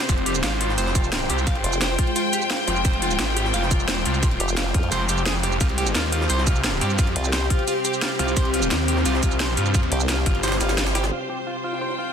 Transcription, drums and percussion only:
0.00 snare, ride
0.09 kick, closed hi-hat, ride, shaker
0.18 ride
0.26 closed hi-hat, ride
0.35 ride, shaker
0.43 snare, closed hi-hat, ride, shaker
0.61 closed hi-hat, ride
0.69 snare
0.78 closed hi-hat, ride, shaker
0.87 snare
0.95 kick, closed hi-hat, ride, shaker
1.04 shaker
1.12 snare, closed hi-hat, ride, shaker
1.30 closed hi-hat, ride, shaker
1.38 shaker
1.47 kick, closed hi-hat, ride, shaker
1.55 ride
1.64 closed hi-hat, ride
1.73 shaker
1.81 snare, closed hi-hat, ride, shaker
1.99 kick, closed hi-hat, ride
2.07 ride
2.16 closed hi-hat, ride, shaker
2.33 closed hi-hat, ride, shaker
2.42 shaker
2.50 snare, closed hi-hat, ride, shaker
2.68 snare, closed hi-hat, ride, shaker
2.76 shaker
2.85 kick, closed hi-hat, ride, shaker
2.93 ride
3.02 closed hi-hat, ride
3.11 ride, shaker
3.19 snare, closed hi-hat, ride, shaker
3.37 closed hi-hat, ride
3.45 snare
3.54 closed hi-hat, ride, shaker
3.62 snare
3.71 kick, closed hi-hat, ride, shaker
3.80 shaker
3.88 snare, closed hi-hat, ride, shaker
4.06 closed hi-hat, ride, shaker
4.14 shaker
4.23 kick, closed hi-hat, ride, shaker
4.31 ride
4.40 closed hi-hat, ride
4.49 shaker
4.57 snare, closed hi-hat, ride, shaker
4.74 kick, closed hi-hat, ride
4.83 ride
4.92 closed hi-hat, ride, shaker
5.09 closed hi-hat, ride, shaker
5.18 shaker
5.26 snare, closed hi-hat, ride, shaker
5.43 snare, closed hi-hat, ride, shaker
5.52 shaker
5.61 kick, closed hi-hat, ride, shaker
5.69 ride
5.78 closed hi-hat, ride
5.87 ride, shaker
5.95 snare, closed hi-hat, ride, shaker
6.12 closed hi-hat, ride
6.21 snare
6.30 closed hi-hat, ride, shaker
6.38 snare
6.47 kick, closed hi-hat, ride, shaker
6.56 shaker
6.64 snare, closed hi-hat, ride, shaker
6.81 closed hi-hat, ride, shaker
6.90 shaker
6.99 kick, closed hi-hat, ride, shaker
7.07 ride
7.16 closed hi-hat, ride
7.24 shaker
7.33 snare, closed hi-hat, ride, shaker
7.50 kick, closed hi-hat, ride
7.59 ride
7.68 closed hi-hat, ride, shaker
7.85 closed hi-hat, ride, shaker
7.93 shaker
8.02 snare, closed hi-hat, ride, shaker
8.19 snare, closed hi-hat, ride, shaker
8.28 shaker
8.37 kick, closed hi-hat, ride, shaker
8.45 ride
8.54 closed hi-hat, ride
8.62 ride, shaker
8.71 snare, closed hi-hat, ride, shaker
8.88 closed hi-hat, ride
8.97 snare
9.05 closed hi-hat, ride, shaker
9.14 snare
9.23 kick, closed hi-hat, ride, shaker
9.31 shaker
9.40 snare, closed hi-hat, ride, shaker
9.57 closed hi-hat, ride, shaker
9.66 shaker
9.74 kick, closed hi-hat, ride, shaker
9.83 ride
9.92 closed hi-hat, ride
10.00 shaker
10.09 snare, closed hi-hat, ride, shaker
10.26 kick, closed hi-hat, ride
10.35 ride
10.43 snare, closed hi-hat, ride, shaker
10.48 snare, ride
10.52 snare, ride
10.61 snare, closed hi-hat, ride, shaker
10.69 snare, ride, shaker
10.78 snare, closed hi-hat, ride, shaker
10.87 snare, ride
10.95 snare, closed hi-hat, ride, shaker
11.04 snare, ride, shaker
11.30 ride
11.47 ride
11.73 snare
11.81 ride
11.90 snare

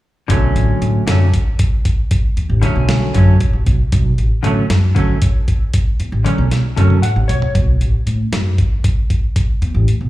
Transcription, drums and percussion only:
0.30 kick, closed hi-hat
0.56 closed hi-hat
0.82 closed hi-hat
1.08 snare, closed hi-hat
1.34 kick, closed hi-hat
1.59 kick, closed hi-hat
1.85 kick, closed hi-hat
2.11 kick, closed hi-hat
2.37 closed hi-hat
2.63 closed hi-hat
2.89 snare, closed hi-hat
3.15 kick, closed hi-hat
3.40 kick, closed hi-hat
3.66 kick, closed hi-hat
3.92 kick, closed hi-hat
4.18 closed hi-hat
4.44 closed hi-hat
4.70 snare, closed hi-hat
4.96 kick, closed hi-hat
5.22 kick, closed hi-hat
5.48 kick, closed hi-hat
5.74 kick, closed hi-hat
6.00 closed hi-hat
6.26 closed hi-hat
6.51 snare, closed hi-hat
6.77 closed hi-hat, high tom
6.90 high tom
7.03 closed hi-hat, mid tom
7.29 closed hi-hat, floor tom
7.42 floor tom
7.55 kick, closed hi-hat
7.81 closed hi-hat
8.07 closed hi-hat
8.33 snare, closed hi-hat
8.58 kick, closed hi-hat
8.84 kick, closed hi-hat
9.10 kick, closed hi-hat
9.36 kick, closed hi-hat
9.62 closed hi-hat
9.88 closed hi-hat

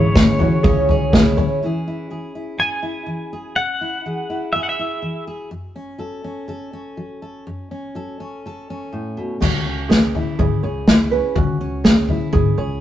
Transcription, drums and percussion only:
0.16 kick, snare, floor tom
0.40 floor tom
0.64 kick, floor tom
0.89 floor tom
1.13 kick, snare, floor tom
1.38 floor tom
9.42 kick, floor tom, crash
9.90 kick, snare
10.15 floor tom
10.39 kick, floor tom
10.88 kick, snare
11.36 kick, floor tom
11.85 kick, snare
12.09 floor tom
12.33 kick, floor tom

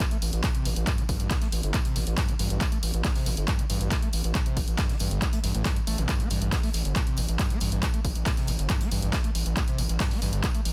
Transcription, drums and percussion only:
0.00 kick, clap, closed hi-hat, tambourine
0.11 closed hi-hat
0.22 open hi-hat, tambourine
0.33 closed hi-hat
0.43 kick, snare, clap, closed hi-hat, tambourine
0.55 closed hi-hat
0.65 open hi-hat, tambourine
0.76 closed hi-hat
0.87 kick, clap, closed hi-hat, tambourine
0.98 closed hi-hat
1.09 kick, open hi-hat, tambourine
1.20 closed hi-hat
1.30 kick, snare, clap, closed hi-hat, tambourine
1.42 snare, closed hi-hat
1.52 open hi-hat, tambourine
1.63 closed hi-hat
1.74 kick, clap, closed hi-hat, tambourine
1.85 closed hi-hat
1.96 snare, open hi-hat, tambourine
2.07 closed hi-hat
2.18 kick, snare, clap, closed hi-hat, tambourine
2.29 closed hi-hat
2.39 open hi-hat, tambourine
2.50 closed hi-hat
2.61 kick, clap, closed hi-hat, tambourine
2.72 closed hi-hat
2.83 open hi-hat, tambourine
2.94 closed hi-hat
3.04 kick, snare, clap, closed hi-hat, tambourine
3.15 snare, open hi-hat
3.26 snare, open hi-hat, tambourine
3.37 closed hi-hat
3.48 kick, clap, closed hi-hat, tambourine
3.59 closed hi-hat
3.69 open hi-hat, tambourine
3.81 closed hi-hat
3.91 kick, snare, clap, closed hi-hat, tambourine
4.02 closed hi-hat
4.13 open hi-hat, tambourine
4.24 closed hi-hat
4.35 kick, clap, closed hi-hat, tambourine
4.46 closed hi-hat
4.57 kick, open hi-hat, tambourine
4.68 closed hi-hat
4.78 kick, snare, clap, closed hi-hat, tambourine
4.89 snare, closed hi-hat
4.99 open hi-hat, tambourine
5.11 closed hi-hat
5.22 kick, clap, closed hi-hat, tambourine
5.33 closed hi-hat
5.44 snare, open hi-hat, tambourine
5.55 closed hi-hat
5.65 kick, snare, clap, closed hi-hat, tambourine
5.76 closed hi-hat
5.87 open hi-hat, tambourine
5.98 closed hi-hat
6.09 kick, clap, closed hi-hat, tambourine
6.20 closed hi-hat
6.30 open hi-hat, tambourine
6.42 closed hi-hat
6.52 kick, snare, clap, closed hi-hat, tambourine
6.63 snare, open hi-hat
6.73 snare, open hi-hat, tambourine
6.85 closed hi-hat
6.96 kick, clap, closed hi-hat, tambourine
7.07 closed hi-hat
7.17 open hi-hat, tambourine
7.29 closed hi-hat
7.39 kick, snare, clap, closed hi-hat, tambourine
7.50 closed hi-hat
7.60 open hi-hat, tambourine
7.72 closed hi-hat
7.83 kick, clap, closed hi-hat, tambourine
7.94 closed hi-hat
8.05 kick, open hi-hat, tambourine
8.15 closed hi-hat
8.26 kick, snare, clap, closed hi-hat, tambourine
8.37 snare, closed hi-hat
8.47 open hi-hat, tambourine
8.59 closed hi-hat
8.69 kick, clap, closed hi-hat, tambourine
8.81 closed hi-hat
8.91 snare, open hi-hat, tambourine
9.02 closed hi-hat
9.13 kick, snare, clap, closed hi-hat, tambourine
9.24 closed hi-hat
9.35 open hi-hat, tambourine
9.46 closed hi-hat
9.57 kick, clap, closed hi-hat, tambourine
9.68 closed hi-hat
9.78 open hi-hat, tambourine
9.89 closed hi-hat
10.00 kick, snare, clap, closed hi-hat, tambourine
10.11 snare, open hi-hat
10.22 snare, open hi-hat, tambourine
10.33 closed hi-hat
10.44 kick, clap, closed hi-hat, tambourine
10.55 closed hi-hat
10.65 open hi-hat, tambourine

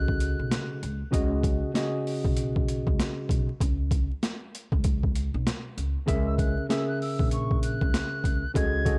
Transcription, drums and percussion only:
0.08 kick
0.20 closed hi-hat
0.52 snare, closed hi-hat
0.83 closed hi-hat
1.13 kick, closed hi-hat
1.43 kick, closed hi-hat
1.75 snare, closed hi-hat
2.07 open hi-hat
2.25 kick
2.37 closed hi-hat
2.56 kick
2.68 closed hi-hat
2.87 kick
3.00 snare, closed hi-hat
3.29 kick, closed hi-hat
3.60 kick, closed hi-hat
3.91 kick, closed hi-hat
4.23 snare, closed hi-hat
4.55 closed hi-hat
4.72 kick
4.84 kick, closed hi-hat
5.03 kick
5.15 closed hi-hat
5.47 snare, closed hi-hat
5.78 closed hi-hat
6.08 kick, closed hi-hat
6.38 kick, closed hi-hat
6.70 snare, closed hi-hat
7.02 open hi-hat
7.19 kick
7.31 closed hi-hat
7.51 kick
7.63 closed hi-hat
7.81 kick
7.94 snare, closed hi-hat
8.24 kick, closed hi-hat
8.55 kick, closed hi-hat
8.86 kick, closed hi-hat

